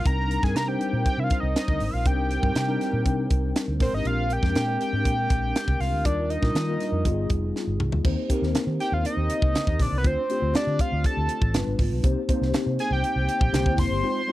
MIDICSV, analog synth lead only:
0, 0, Header, 1, 2, 480
1, 0, Start_track
1, 0, Key_signature, -3, "minor"
1, 0, Tempo, 499168
1, 57, Time_signature, 4, 2, 24, 8
1, 13770, End_track
2, 0, Start_track
2, 0, Title_t, "Analog synth lead"
2, 0, Program_c, 0, 81
2, 61, Note_on_c, 0, 82, 110
2, 419, Note_on_c, 0, 80, 96
2, 433, Note_off_c, 0, 82, 0
2, 541, Note_on_c, 0, 82, 114
2, 555, Note_off_c, 0, 80, 0
2, 653, Note_on_c, 0, 79, 92
2, 668, Note_off_c, 0, 82, 0
2, 1016, Note_off_c, 0, 79, 0
2, 1021, Note_on_c, 0, 79, 99
2, 1148, Note_on_c, 0, 76, 62
2, 1162, Note_off_c, 0, 79, 0
2, 1190, Note_on_c, 0, 77, 96
2, 1204, Note_off_c, 0, 76, 0
2, 1347, Note_on_c, 0, 75, 84
2, 1362, Note_off_c, 0, 77, 0
2, 1503, Note_off_c, 0, 75, 0
2, 1512, Note_on_c, 0, 75, 92
2, 1836, Note_on_c, 0, 76, 59
2, 1851, Note_off_c, 0, 75, 0
2, 1860, Note_on_c, 0, 77, 86
2, 1874, Note_off_c, 0, 76, 0
2, 1987, Note_on_c, 0, 79, 103
2, 2001, Note_off_c, 0, 77, 0
2, 3424, Note_off_c, 0, 79, 0
2, 3672, Note_on_c, 0, 72, 83
2, 3778, Note_off_c, 0, 72, 0
2, 3792, Note_on_c, 0, 75, 99
2, 3912, Note_on_c, 0, 77, 112
2, 3926, Note_off_c, 0, 75, 0
2, 4160, Note_on_c, 0, 79, 113
2, 4175, Note_off_c, 0, 77, 0
2, 4622, Note_off_c, 0, 79, 0
2, 4628, Note_on_c, 0, 79, 120
2, 5581, Note_on_c, 0, 77, 99
2, 5595, Note_off_c, 0, 79, 0
2, 5821, Note_on_c, 0, 74, 89
2, 5835, Note_off_c, 0, 77, 0
2, 6059, Note_on_c, 0, 75, 90
2, 6074, Note_off_c, 0, 74, 0
2, 7020, Note_off_c, 0, 75, 0
2, 8465, Note_on_c, 0, 79, 91
2, 8591, Note_on_c, 0, 77, 78
2, 8605, Note_off_c, 0, 79, 0
2, 8705, Note_off_c, 0, 77, 0
2, 8713, Note_on_c, 0, 75, 91
2, 9440, Note_on_c, 0, 74, 85
2, 9454, Note_off_c, 0, 75, 0
2, 9589, Note_off_c, 0, 74, 0
2, 9595, Note_on_c, 0, 71, 78
2, 9681, Note_on_c, 0, 72, 93
2, 9695, Note_off_c, 0, 71, 0
2, 10149, Note_off_c, 0, 72, 0
2, 10157, Note_on_c, 0, 74, 109
2, 10391, Note_on_c, 0, 77, 107
2, 10406, Note_off_c, 0, 74, 0
2, 10634, Note_on_c, 0, 81, 99
2, 10648, Note_off_c, 0, 77, 0
2, 11105, Note_off_c, 0, 81, 0
2, 12308, Note_on_c, 0, 80, 96
2, 12413, Note_off_c, 0, 80, 0
2, 12429, Note_on_c, 0, 79, 107
2, 13261, Note_on_c, 0, 84, 116
2, 13275, Note_off_c, 0, 79, 0
2, 13770, Note_off_c, 0, 84, 0
2, 13770, End_track
0, 0, End_of_file